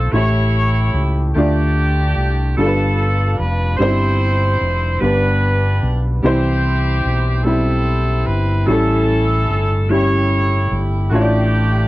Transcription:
Already playing: A3 C4 F4 A4 C5
0.12 A1 A2 A3 E4 G4 C#5
0.94 C#2
1.34 D2 D3 A3 D4 F4 G4
1.38 D5
2.17 C2
2.57 G1 G2 G3 D4 F4 A4
2.66 B4
3.37 F1 B4
3.77 G1 G2 G3 C4 D#4 E4 G4 C5
3.82 C5
3.87 E4
4.61 F1
5.00 G1 G2 G3 B3 D4 G4 B4
5.04 B4
5.83 B1
6.23 C2 E3 G3 C4 E4 G4 C5
7.05 B1
7.43 G3 C4 E4 A4
7.48 G4
8.25 G1 B4
8.66 A1 A2 G3 C#4 E4 A4
9.49 G1
9.89 G3 C#4 E4 G4 C#5
10.71 G1
11.10 A1 A2 A3 D4 F4 G4
11.15 C#5
11.22 D5

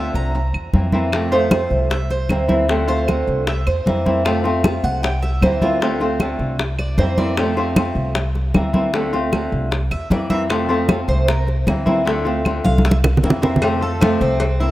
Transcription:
Already playing: D3 A3 C4 F4 E5
0.14 C2 A#5, high conga
0.35 muted nylon-string guitar stroke, high conga
0.53 E2, high conga, claves
0.73 F2 E3 A#3 C4 E4, high conga
0.92 E3 A#3 C4 E4, high conga
1.12 C3 F3 A3 C4 F4, high bongo, high conga, claves
1.32 F3 A3 C4 F4 C5, high bongo, high conga
1.51 F3 A3 C4 F4, high bongo, high conga, claves
1.70 C2, high conga
1.90 E5, muted nylon-string guitar stroke, high bongo, high conga
2.10 C5, high bongo, high conga
2.29 D2 E3 A#3 C4 E4, high bongo, low bongo, high conga, claves
2.48 E3 A#3 C4 E4, high bongo, high conga
2.69 D3 A3 C4 F4, high bongo, high conga
2.88 A3 C4 F4 C5, high bongo, high conga
3.07 D3 A3 C4 F4, high bongo, high conga, claves
3.27 C2, high conga
3.47 E5, muted nylon-string guitar stroke, high bongo, high conga
3.67 E2 C5, high bongo, high conga, claves
3.86 F2 E3 A#3 C4 E4, high bongo, low bongo, high conga
4.06 E3 A#3 C4 E4, high bongo, high conga
4.25 C3 F3 A3 C4 F4, high bongo, high conga, claves
4.44 F3 A3 C4 F4, high bongo, high conga
4.64 F3 A3 C4 F4, high bongo, high conga, claves
4.83 C2 F#5, high conga
5.03 G5, muted nylon-string guitar stroke, high bongo, high conga
5.22 E5, high bongo, high conga
5.42 D2 E3 A#3 C4 E4 C5, high bongo, low bongo, high conga, claves
5.62 E3 A#3 C4 E4 F4, high bongo, high conga
5.81 D3 A3 C4 F4, high bongo, high conga
6.00 A3 C4 F4, high bongo, high conga
6.20 D3 A3 C4 F4, high bongo, high conga, claves
6.39 C2, high conga
6.59 muted nylon-string guitar stroke, high bongo, high conga
6.79 D5, high bongo, high conga, claves
6.98 F2 E3 A#3 C4 E4 C5, high bongo, low bongo, high conga
7.18 E3 A#3 C4 E4 D5, high bongo, high conga
7.37 C3 F3 A3 C4 F4, high bongo, high conga, claves
7.57 F3 A3 C4 F4, high bongo, high conga
7.76 F3 A3 C4 F4, high bongo, high conga, claves
7.95 C2, high conga
8.15 muted nylon-string guitar stroke, high bongo, high conga
8.35 high bongo, high conga
8.54 D2 E3 A#3 C4 E4, high bongo, low bongo, high conga, claves
8.73 E3 A#3 C4 E4, high bongo, high conga
8.94 D3 A3 C4 F4, high bongo, high conga
9.13 A3 C4 F4, high bongo, high conga
9.32 D3 A3 C4 F4, high bongo, high conga, claves
9.52 C2, high conga
9.71 muted nylon-string guitar stroke, high bongo, high conga
9.91 E2 E5, high bongo, high conga, claves
10.10 F2 E3 A#3 C4 E4 D5, high bongo, low bongo, high conga
10.30 E3 A#3 C4 E4 E5, high bongo, high conga
10.49 C3 F3 A3 C4 F4, high bongo, high conga, claves
10.69 F3 A3 C4 F4, high bongo, high conga
10.88 F3 A3 C4 F4, high bongo, high conga, claves
11.08 C2 C5, high conga
11.28 A#4, muted nylon-string guitar stroke, high bongo, high conga
11.47 high bongo, high conga
11.67 D2 E3 A#3 C4 E4, high bongo, low bongo, high conga, claves
11.86 E3 A#3 C4 E4, high bongo, high conga
12.05 D3 A3 C4 F4, high bongo, high conga
12.25 A3 C4 F4, high bongo, high conga
12.45 D3 A3 C4 F4, high bongo, high conga, claves
12.64 C2 F5, high conga
12.78 high conga
12.85 E5, muted nylon-string guitar stroke, high bongo
12.91 high conga
13.04 high bongo, low conga, claves
13.17 low conga
13.23 F2 E3 A#3 C4 E4, high bongo, low bongo
13.30 low conga
13.42 E3 A#3 C4 E4, high bongo, low conga
13.56 low conga
13.62 C3 F3 A3 C4 F4, cowbell, high conga, claves
13.81 A3 C4 F4 A4, high conga
14.01 C3 F3 A3 C4 F4, cowbell, high conga, claves
14.21 C2 C4, high conga
14.40 muted nylon-string guitar stroke, cowbell, high conga
14.60 A#3 C4 E4, high conga

